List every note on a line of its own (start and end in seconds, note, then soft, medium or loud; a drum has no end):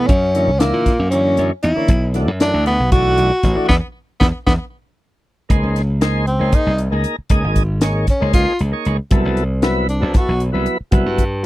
0.07 0.49 F#2 medium
0.07 0.61 C#4 loud
0.07 kick loud
0.07 closed hi-hat medium
0.34 0.51 D3 medium
0.34 0.51 E3 medium
0.34 0.51 A#3 medium
0.34 0.52 C#4 medium
0.34 closed hi-hat medium
0.47 0.71 C#2 medium
0.59 0.92 D3 medium
0.59 0.92 E3 medium
0.59 1.10 A#3 medium
0.59 0.93 A#3 medium
0.59 0.93 E4 medium
0.59 snare loud
0.59 closed hi-hat medium
0.73 0.97 A#2 medium
0.86 kick medium
0.86 snare soft
0.86 closed hi-hat medium
0.99 1.34 F#2 medium
1.11 1.52 D3 medium
1.11 1.52 E3 medium
1.11 1.52 A#3 medium
1.11 1.48 C#4 medium
1.11 1.53 C#4 medium
1.11 closed hi-hat medium
1.37 1.50 F#2 medium
1.37 closed hi-hat medium
1.63 1.75 E2 medium
1.63 2.10 E4 medium
1.63 closed hi-hat medium
1.75 1.89 D3 medium
1.75 1.89 E3 medium
1.75 1.89 A#3 medium
1.75 1.90 C#4 medium
1.75 muted slap bass stroke soft
1.88 2.28 B1 medium
1.88 kick loud
1.88 closed hi-hat medium
2.14 2.31 E3 medium
2.14 2.31 A3 medium
2.14 2.31 D4 medium
2.14 2.31 F#4 medium
2.14 snare soft
2.14 closed hi-hat medium
2.28 2.51 F#2 medium
2.40 2.72 E3 medium
2.40 2.72 A3 medium
2.40 2.73 D4 medium
2.40 2.65 D4 medium
2.40 2.73 F#4 medium
2.40 snare loud
2.40 closed hi-hat medium
2.54 2.77 D2 medium
2.66 2.91 B3 medium
2.66 closed hi-hat medium
2.80 3.15 B1 medium
2.91 3.32 E3 medium
2.91 3.32 A3 medium
2.91 3.32 D4 medium
2.91 3.65 F#4 loud
2.91 3.32 F#4 medium
2.91 kick loud
2.91 snare soft
2.91 closed hi-hat medium
3.18 3.30 B1 medium
3.18 closed hi-hat medium
3.43 3.56 A1 medium
3.43 kick medium
3.43 snare soft
3.43 closed hi-hat medium
3.55 3.69 E3 medium
3.55 3.69 A3 medium
3.55 3.68 D4 medium
3.55 3.70 F#4 medium
3.55 muted slap bass stroke soft
3.68 3.79 E2 medium
3.68 3.75 B3 medium
3.68 3.77 B3 medium
3.68 3.77 D4 medium
3.68 3.78 E4 medium
3.68 kick medium
3.68 snare medium
4.20 4.31 E2 medium
4.20 4.27 B3 medium
4.20 4.29 B3 medium
4.20 4.29 D4 medium
4.20 4.29 E4 medium
4.20 kick medium
4.20 snare medium
4.46 4.57 E2 medium
4.46 4.53 B3 medium
4.46 4.55 B3 medium
4.46 4.55 D4 medium
4.46 4.55 E4 medium
4.46 kick medium
4.46 snare medium
5.49 5.62 C#2 medium
5.49 5.82 A#3 medium
5.49 5.82 D#4 medium
5.49 5.82 G#4 medium
5.49 5.83 C5 medium
5.49 kick medium
5.49 closed hi-hat medium
5.63 6.37 C#2 medium
5.76 snare soft
5.76 closed hi-hat medium
6.01 6.25 A#3 medium
6.01 6.26 D#4 medium
6.01 6.26 G#4 medium
6.01 6.26 C5 loud
6.01 snare loud
6.01 closed hi-hat medium
6.27 6.56 C4 medium
6.27 closed hi-hat medium
6.39 6.52 C#2 medium
6.39 6.72 A#3 medium
6.39 6.72 D#4 medium
6.39 6.73 G#4 medium
6.39 6.73 C5 medium
6.52 6.80 D#4 medium
6.52 kick medium
6.52 closed hi-hat medium
6.66 6.90 C2 medium
6.78 closed hi-hat medium
6.91 7.04 C#2 medium
6.91 7.16 A#3 medium
6.91 7.16 D#4 medium
6.91 7.16 G#4 medium
6.91 7.16 A#4 medium
7.04 closed hi-hat medium
7.18 muted slap bass stroke soft
7.30 7.42 C#2 medium
7.30 7.63 A#3 medium
7.30 7.63 D#4 medium
7.30 7.63 G#4 medium
7.30 7.63 D#5 medium
7.30 kick medium
7.30 closed hi-hat medium
7.44 8.04 G#1 medium
7.56 kick medium
7.56 closed hi-hat medium
7.81 8.06 A#3 medium
7.81 8.07 D#4 medium
7.81 8.07 G#4 medium
7.81 8.07 C#5 loud
7.81 snare loud
7.81 closed hi-hat medium
8.07 8.33 C#4 medium
8.07 kick medium
8.07 snare soft
8.07 closed hi-hat medium
8.20 8.45 C#2 medium
8.20 8.53 A#3 medium
8.20 8.53 D#4 medium
8.20 8.53 G#4 medium
8.20 8.54 C5 medium
8.33 8.58 F4 loud
8.33 kick medium
8.33 closed hi-hat medium
8.59 8.72 C#2 medium
8.59 closed hi-hat medium
8.72 8.97 A#3 medium
8.72 8.97 D#4 medium
8.72 8.97 G#4 medium
8.72 8.97 C#5 medium
8.85 8.98 C#2 medium
8.85 closed hi-hat medium
9.11 9.23 C2 medium
9.11 9.43 F#3 medium
9.11 9.44 B3 medium
9.11 9.44 E4 medium
9.11 9.44 A4 medium
9.11 kick loud
9.11 closed hi-hat medium
9.25 9.98 C2 medium
9.37 closed hi-hat medium
9.62 9.87 F#3 medium
9.62 9.87 B3 medium
9.62 9.87 E4 medium
9.62 9.88 B4 loud
9.62 snare loud
9.62 closed hi-hat medium
9.89 10.18 D4 medium
9.89 closed hi-hat medium
10.00 10.14 C2 medium
10.00 10.33 F#3 medium
10.00 10.34 B3 medium
10.00 10.34 E4 medium
10.00 10.34 A4 medium
10.14 10.42 F#4 medium
10.14 kick loud
10.14 snare soft
10.14 closed hi-hat medium
10.28 10.52 B1 medium
10.40 closed hi-hat medium
10.52 10.66 C2 medium
10.52 10.77 F#3 medium
10.52 10.78 B3 medium
10.52 10.78 E4 medium
10.52 10.78 B4 medium
10.66 closed hi-hat medium
10.80 muted slap bass stroke soft
10.91 11.04 C2 medium
10.91 11.24 F#3 medium
10.91 11.25 B3 medium
10.91 11.25 E4 medium
10.91 11.25 F#4 medium
10.91 kick loud
10.91 closed hi-hat medium
11.06 11.46 G2 medium
11.18 kick medium
11.18 closed hi-hat medium